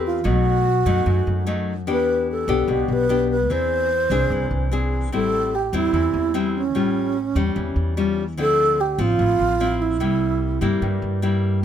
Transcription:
Already playing: E2 E3 C4 G4 B4
0.06 F4
0.24 B1 B2 F#3 A3 D#4 F#4
0.86 F#2 F#3 A3 D#4
1.06 F#2
1.27 F#2
1.47 F#3 A3 D#4
1.87 E2 E3 B3 D4 G4
1.92 B4
2.31 A4
2.48 B1 B3 D4 G4
2.68 B1 B2 G4
2.88 B1
2.93 B4
3.09 B3 D4 G4
3.31 B4
3.49 E2 E3 C4 D4 G#4 C5
4.10 C2 C4 D4 G#4
4.30 C2 E3
4.51 C2
4.72 C4 D4 G#4
5.12 A1 A2 G3 C4 E4 A4
5.55 G4
5.73 E2 G3 C4 E4
5.93 E2 E3
6.14 E2
6.34 G3 C4 E4
6.57 C#4
6.75 A1 A2 G3 C#4 F4
7.35 E2 G3 C#4
7.56 E2 E3
7.76 E2
7.97 G3 C#4 F4
8.37 D2 D3 F3 C4 E4 A4
8.81 G4
8.98 A1 F3 C4 F4
9.19 A1 A2
9.39 A1
9.60 F3 C4 E4
9.82 E4
10.00 C2 C3 G3 A#3 E4
10.61 G2 G3 A#3 E4
10.82 G2
11.02 G2
11.22 G3 A#3 E4

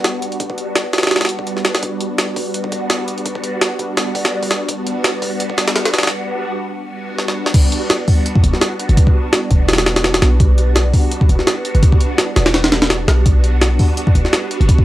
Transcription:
Already playing: G3 B3 D4 F#4
0.04 snare, closed hi-hat
0.22 closed hi-hat
0.32 closed hi-hat
0.40 G3 B3 D4 F#4, kick, closed hi-hat
0.50 kick
0.58 closed hi-hat
0.75 snare, closed hi-hat
0.93 G3 B3 D4 F#4, snare, closed hi-hat
0.98 snare, closed hi-hat
1.03 snare, closed hi-hat
1.07 snare, closed hi-hat
1.11 snare, closed hi-hat
1.16 snare, closed hi-hat
1.21 snare, closed hi-hat
1.25 snare, closed hi-hat
1.29 G3 B3 D4 F#4, closed hi-hat
1.39 kick
1.47 closed hi-hat
1.57 snare
1.65 G3 B3 D4 F#4, snare, closed hi-hat
1.75 snare, closed hi-hat
1.83 G3 B3 D4 F#4, kick, closed hi-hat
2.01 closed hi-hat
2.18 snare, closed hi-hat
2.36 G3 B3 D4 F#4, kick, open hi-hat
2.54 closed hi-hat
2.64 kick
2.72 kick, closed hi-hat
2.90 snare, closed hi-hat
3.08 closed hi-hat
3.18 closed hi-hat
3.25 G3 B3 D4 F#4, kick, closed hi-hat
3.35 kick
3.44 closed hi-hat
3.61 snare, closed hi-hat
3.79 G3 B3 D4 F#4, kick, closed hi-hat
3.97 snare, closed hi-hat
4.15 kick, open hi-hat
4.25 snare, closed hi-hat
4.43 kick, open hi-hat
4.51 snare, closed hi-hat
4.68 G3 B3 D4 F#4, kick, closed hi-hat
4.87 closed hi-hat
5.04 snare, closed hi-hat
5.22 G3 B3 D4 F#4, kick, open hi-hat
5.40 closed hi-hat
5.50 kick
5.58 snare, closed hi-hat
5.68 snare, closed hi-hat
5.76 snare, closed hi-hat
5.85 snare, closed hi-hat
5.94 snare, closed hi-hat
5.98 snare, closed hi-hat
6.03 snare, closed hi-hat
6.07 snare, closed hi-hat
6.11 G3 B3 D4 F#4
6.65 G3 B3 D4 F#4
7.18 snare
7.28 snare
7.46 snare
7.54 G3 B3 D4 F#4, kick, closed hi-hat, crash
7.72 closed hi-hat
7.90 snare, closed hi-hat
8.08 G3 B3 D4 F#4, kick, open hi-hat
8.26 closed hi-hat
8.35 kick
8.44 E1 G3 B3 D4 F#4, closed hi-hat
8.53 snare
8.61 snare, closed hi-hat
8.79 G3 B3 D4 F#4, closed hi-hat
8.89 G1, closed hi-hat
8.97 G3 B3 D4 F#4, kick, closed hi-hat
9.07 kick
9.33 snare, closed hi-hat
9.51 E1 G3 B3 D4 F#4, kick, closed hi-hat
9.69 snare, closed hi-hat
9.73 snare, closed hi-hat
9.78 snare, closed hi-hat
9.86 G3 B3 D4 F#4, snare, closed hi-hat
9.96 snare, closed hi-hat
10.04 snare, closed hi-hat
10.14 snare, closed hi-hat
10.22 B1 G3 B3 D4 F#4, snare, closed hi-hat
10.40 G3 B3 D4 F#4, kick, closed hi-hat
10.58 closed hi-hat
10.76 snare, closed hi-hat
10.93 G3 B3 D4 F#4, kick, open hi-hat
11.11 closed hi-hat
11.21 kick
11.29 E1 G3 B3 D4 F#4, closed hi-hat
11.39 snare
11.47 snare, closed hi-hat
11.65 G3 B3 D4 F#4, closed hi-hat
11.75 G1, closed hi-hat
11.83 G3 B3 D4 F#4, kick, closed hi-hat
11.92 kick
12.01 closed hi-hat
12.18 snare, closed hi-hat
12.36 E1 G3 B3 D4 F#4, snare, closed hi-hat
12.46 snare, closed hi-hat
12.54 snare, closed hi-hat
12.64 snare, closed hi-hat
12.72 G3 B3 D4 F#4, snare, closed hi-hat
12.82 snare, closed hi-hat
12.90 snare, closed hi-hat
13.08 B1 G3 B3 D4 F#4, snare, closed hi-hat
13.25 G3 B3 D4 F#4, kick, closed hi-hat
13.44 closed hi-hat
13.61 snare, closed hi-hat
13.79 G3 B3 D4 F#4, kick, open hi-hat
13.97 closed hi-hat
14.07 kick
14.15 E1 G3 B3 D4 F#4, closed hi-hat
14.25 snare
14.33 snare, closed hi-hat
14.50 G3 B3 D4 F#4, closed hi-hat
14.61 G1, closed hi-hat
14.69 G3 B3 D4 F#4, kick, closed hi-hat
14.78 kick

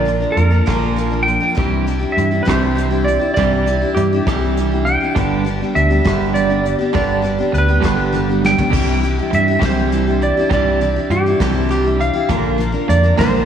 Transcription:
Already playing: A#1 D5
0.05 A#2 F3 A#3 D4 A#4, closed hi-hat
0.20 F3 A#3 D4 A#4
0.32 A#4
0.36 F2 A#2 F3, closed hi-hat
0.50 F3 A#3 D4 A#4
0.66 A#1 A#2 D3 F3 A#3 D4 A#4, kick, cross-stick, closed hi-hat
0.96 F3 A#3 D4 A#4, closed hi-hat
1.11 F3 A#3 D4 A#4
1.23 G5
1.28 A#2 F3, closed hi-hat
1.40 F3 A#3 D4 A#4
1.55 C2 C3 E3 G3 D4 E4 G4, kick, closed hi-hat
1.59 G3
1.87 C3 E3 G3 D4 E4 G4, closed hi-hat
1.99 D4 E4 G4
2.12 E5
2.17 G2 C3 E3, closed hi-hat
2.31 D4 E4 G4
2.43 C3 G3 D4 C5
2.47 C2 C3 E3 G3 E4 G4, kick, cross-stick, closed hi-hat
2.75 G3 D4 E4 G4, closed hi-hat
2.91 D4 E4 G4
3.04 C3 E3 D5, closed hi-hat
3.19 D4 E4 G4
3.34 C2 C3 G3 D4 E4 G4 D5, kick, closed hi-hat
3.38 C3 E3 G3
3.66 C3 E3 G3 D4 E4 G4, closed hi-hat
3.82 D4 E4 G4
3.95 G2 C3 E3 G4, closed hi-hat
4.13 D4 E4 G4
4.26 C2 C3 E3 G3 D4 E4 G4, kick, cross-stick, closed hi-hat
4.57 G3 D4 E4 G4, closed hi-hat
4.71 D4 E4 G4
4.85 C3 E3 G5, closed hi-hat
5.01 D4 E4 G4
5.15 G1 G2 D3 G3 B3 D4 G4, kick, closed hi-hat
5.45 D3 G3 B3 D4 G4, closed hi-hat
5.61 G3 B3 D4 G4
5.75 D2 G2 D3 E5, closed hi-hat
5.90 G3 B3 D4 G4
6.04 G1 G2 D3 G3 B3 D4 G4, kick, cross-stick, closed hi-hat
6.34 G3 B3 D4 G4 D5, closed hi-hat
6.49 G3 B3 D4 G4
6.64 G2 D3, closed hi-hat
6.79 B3 D4 G4
6.83 G3
6.93 G1 G2 D3 G3 B3 D4 G4 D5, kick, closed hi-hat
7.22 G2 D3 G3 B3 D4 G4, closed hi-hat
7.38 G3 B3 D4 G4
7.52 D2 G2 D3 B4, closed hi-hat
7.58 B4
7.68 G3 B3 D4 G4
7.80 G1 G2 D3 G3 B3 D4, kick, closed hi-hat
7.85 G4 B4, cross-stick
8.13 G3 B3 D4 G4, closed hi-hat
8.29 G3 B3 D4 G4
8.42 G2 D3, snare
8.46 G5
8.58 B3 D4 G4, floor tom
8.63 G3
8.70 C2 C3 E3 G3, kick, crash
8.75 C3 G3 D4 E4 G4
9.00 C3 E3 G3, closed hi-hat
9.05 D4 E4 G4
9.19 D4 E4 G4
9.30 G2 C3 E3, closed hi-hat
9.35 E5
9.48 D4 E4 G4
9.59 C2 C3 E3 G3, kick, snare, closed hi-hat
9.64 D4 E4 G4 C5
9.92 G3 D4 E4 G4, closed hi-hat
10.07 D4 E4 G4
10.22 C3 E3 D5, closed hi-hat
10.37 D4 E4 G4
10.50 C2 C3 E3 G3 D4 D5, kick, closed hi-hat
10.54 E4 G4
10.81 C3 E3 G3 D4 E4 G4, closed hi-hat
10.96 D4 E4 G4
11.10 G2 C3 E3 G4, closed hi-hat
11.26 D4 E4 G4
11.40 C2 C3 E3 G3 D4 E4 G4, kick, snare, closed hi-hat
11.69 G3 D4 E4 G4, closed hi-hat
11.84 D4 E4 G4
11.99 C3 E3 F5, closed hi-hat
12.14 D4 E4 G4
12.29 A#1 A#2 D3 F3 A#3 D4 A#4, kick, closed hi-hat
12.58 A#2 D3 F3 A#3 D4 A#4, closed hi-hat
12.72 F3 A#3 D4 A#4
12.88 F2 A#2 D3 D5, closed hi-hat
13.03 F3 A#3 D4 A#4
13.18 A#1 A#2 D3 F3 A#3 D4 A#4 C5, kick, snare, closed hi-hat

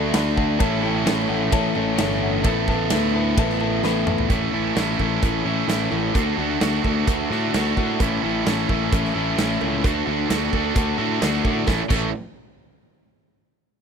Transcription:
Already playing: D2 D3 A3 D4 F#4 A4
0.13 D2 A3 D4 F#4 A4 D5 F#5 B5, snare, ride bell, cowbell
0.36 A4 D5 F#5 A5, kick
0.58 A1 A2 E3 A3 C#4 E4 A4 C#5 E5 A5, kick, ride bell, cowbell
0.82 A3 C#4 E4 A4 C#5 E5 G5
1.05 A1 A3 C#4 E4 A4 C#5 E5 A5, snare, ride bell, cowbell
1.28 A1 A3 C#4 E4 A4 C#5 E5 F#5
1.51 A1 A2 E3 A3 C#4 E4 A4 C#5 E5 A5, kick, ride bell, cowbell
1.75 A1 A3 C#4 E4 A4 C#5 E5 A5, cowbell
1.97 G1 A3 C#4 E4 A4 C#5 E5 A5, snare, ride bell, cowbell
2.22 A4 C#5 E5 F#5
2.44 A1 A3 B3 E4 A4 B4 E5 A5, kick, ride bell, cowbell
2.67 B3 E4 A4 B4 E5 A5, kick, cowbell
2.90 D2 A3 B3 E4 A4 B4 E5 A5, snare, ride bell, cowbell
3.15 B3 E4 A4 B4 E5 A5
3.37 A1 A3 B3 E4 A4 B4 E5 A5, kick, ride bell, cowbell
3.49 snare
3.60 B3 E4 A4 B4 E5 A5, cowbell
3.83 A1 A3 B3 E4 A4 B4 E5 B5, snare, cowbell
4.07 A4 B4 E5 A5, mid tom
4.18 floor tom
4.30 A1 A2 E3 A3 C#4 E4 A4, kick, closed hi-hat, cowbell
4.52 A1 A3 C#4 E4 A4
4.75 A1 A2 E3 A3 C#4 E4, snare, closed hi-hat, cowbell
4.80 A4
4.99 A1 A3 C#4 E4 A4, kick, cowbell
5.22 A1 E3 A3 C#4 E4, kick, closed hi-hat, cowbell
5.45 A1 A2 E3 A3 C#4 E4 A4
5.67 A1 A2 E3 A3 C#4 E4 A4, snare, closed hi-hat, cowbell
5.91 A1 A3 C#4 E4, cowbell
6.14 D2 D3 A3 D4 F#4, kick, closed hi-hat, cowbell
6.18 A4
6.37 D2 A3 D4 F#4 A4
6.61 D2 D3 A3 D4 F#4 A4, snare, closed hi-hat, cowbell
6.83 D2 A3 D4 F#4 A4, kick, cowbell
7.07 D2 D3 A3 D4 F#4, kick, closed hi-hat, cowbell
7.30 A2 D3 A3 D4 F#4 A4, snare
7.54 D2 D3 A3 D4 F#4 A4, snare, closed hi-hat, cowbell
7.77 A2 A3 D4 F#4, kick, cowbell
8.00 A1 A2 E3 A3 C#4 E4 A4, kick, closed hi-hat, cowbell
8.22 A1 A3 C#4 E4 A4
8.46 A1 A2 E3 A3 C#4 E4 A4, snare, closed hi-hat, cowbell
8.69 A1 A3 C#4 E4 A4, kick, cowbell
8.92 A1 E3 A3 C#4 E4, kick, closed hi-hat, cowbell
9.05 snare
9.15 A1 A2 E3 A3 C#4 E4 A4
9.38 A1 A2 E3 A3 C#4 E4 A4, snare, closed hi-hat, cowbell
9.61 C#2 A3 C#4 E4, cowbell
9.84 D2 D3 A3 D4 F#4 A4, kick, closed hi-hat, cowbell
10.06 D2 A3 D4 F#4 A4
10.29 D2 D3 A3 D4 F#4 A4, snare, closed hi-hat, cowbell
10.52 D2 A3 D4 F#4 A4, kick, cowbell
10.75 D2 D3 A3 D4 F#4, kick, closed hi-hat, cowbell
10.98 A2 D3 A3 D4 F#4 A4
11.22 D2 D3 A3 D4 F#4 A4, snare, closed hi-hat, cowbell
11.44 A2 A3 D4 F#4, kick, cowbell
11.67 A1 A2 E3 A3 C#4 E4 A4, kick, snare, cowbell
11.89 A1 A2 E3 A3 C#4 E4 A4, kick, crash, cowbell

